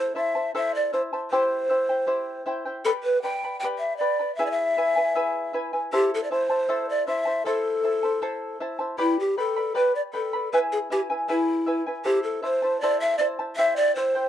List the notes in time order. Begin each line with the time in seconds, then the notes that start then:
Already playing: E4 A4 C5 E5 A5
0.00 C5
0.15 E4 C5 E5 A5
0.35 E4 C5 A5
0.55 E4 A4 C5 E5 A5
0.75 D5
0.93 E4 C5 E5 A5
1.13 E4 C5 A5
1.31 E4 G4 C5 E5 G5
1.70 E4 C5 E5 G5
1.89 E4 C5 G5
2.07 E4 G4 C5 E5 G5
2.46 E4 C5 E5 G5
2.65 E4 C5 G5
2.85 G4 A4 B4 D5 G5 B5
3.04 B4
3.22 B4 D5 G5 B5
3.44 B4 D5 B5
3.60 G4 G5
3.64 B4 D5 G5 B5
3.78 E5
3.97 B4 D5 G5
4.01 D5 B5
4.20 B4 D5 B5
4.35 G#4 E5
4.39 E4 B4 G#5
4.46 D5
4.51 E5
4.77 E4 B4 E5 G#5
4.96 E4 B4 G#5
5.15 E4 G#4 B4 E5 G#5
5.53 E4 B4 E5 G#5
5.73 E4 B4 G#5
5.93 E4 G4 A4 C5 E5 A5
6.14 A4
6.24 D5
6.31 E4 C5 E5 A5
6.50 E4 C5 A5
6.69 E4 A4 C5 E5 A5
6.89 D5
7.07 E4 C5 E5 A5
7.25 E4 C5 A5
7.45 E4 A4 C5 E5 A5
7.83 E4 C5 E5 A5
8.03 E4 C5 A5
8.22 E4 A4 C5 E5 A5
8.60 E4 C5 E5 A5
8.79 E4 C5 A5
8.98 E4 G4 B4 D5 G5 B5
9.20 G4
9.37 A4 B4 D5 G5 B5
9.56 B4 D5 B5
9.75 G4 B4 D5 G5 B5
9.95 D5
10.13 A4 B4 D5 G5 B5
10.33 B4 D5 B5
10.52 E4 G#4 B4 E5 G#5
10.72 G#4
10.90 E4 G4 B4 E5 G#5
11.10 E4 B4 G#5
11.28 E4 G#4 B4 E5 G#5
11.66 E4 B4 E5 G#5
11.86 E4 B4 G#5
12.05 E4 G4 A4 C5 E5 A5
12.23 A4
12.42 E4 C5 E5 A5
12.62 E4 C5 A5
12.81 E4 A4 C5 D5 E5 A5
13.00 E5
13.18 E4 C5 D5 E5 A5
13.39 E4 C5 A5
13.56 E4 G4 C5 E5 G5
13.76 D5
13.96 E4 C5 E5 G5
14.15 E4 C5 G5